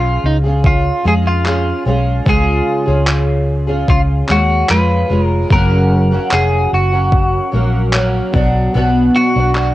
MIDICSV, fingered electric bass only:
0, 0, Header, 1, 2, 480
1, 0, Start_track
1, 0, Tempo, 809935
1, 1341, Time_signature, 4, 2, 24, 8
1, 5775, End_track
2, 0, Start_track
2, 0, Title_t, "Fingered electric bass"
2, 0, Program_c, 0, 33
2, 0, Note_on_c, 0, 35, 76
2, 98, Note_off_c, 0, 35, 0
2, 140, Note_on_c, 0, 37, 75
2, 534, Note_off_c, 0, 37, 0
2, 623, Note_on_c, 0, 41, 67
2, 1016, Note_off_c, 0, 41, 0
2, 1102, Note_on_c, 0, 35, 74
2, 1298, Note_off_c, 0, 35, 0
2, 1344, Note_on_c, 0, 37, 89
2, 1539, Note_off_c, 0, 37, 0
2, 1704, Note_on_c, 0, 37, 74
2, 2278, Note_off_c, 0, 37, 0
2, 2302, Note_on_c, 0, 37, 72
2, 2498, Note_off_c, 0, 37, 0
2, 2545, Note_on_c, 0, 39, 74
2, 2740, Note_off_c, 0, 39, 0
2, 2784, Note_on_c, 0, 41, 68
2, 2979, Note_off_c, 0, 41, 0
2, 3023, Note_on_c, 0, 29, 73
2, 3219, Note_off_c, 0, 29, 0
2, 3265, Note_on_c, 0, 30, 99
2, 3657, Note_off_c, 0, 30, 0
2, 3746, Note_on_c, 0, 29, 69
2, 3941, Note_off_c, 0, 29, 0
2, 3988, Note_on_c, 0, 30, 70
2, 4378, Note_off_c, 0, 30, 0
2, 4466, Note_on_c, 0, 34, 73
2, 4858, Note_off_c, 0, 34, 0
2, 4942, Note_on_c, 0, 35, 83
2, 5138, Note_off_c, 0, 35, 0
2, 5186, Note_on_c, 0, 35, 95
2, 5381, Note_off_c, 0, 35, 0
2, 5546, Note_on_c, 0, 35, 84
2, 5775, Note_off_c, 0, 35, 0
2, 5775, End_track
0, 0, End_of_file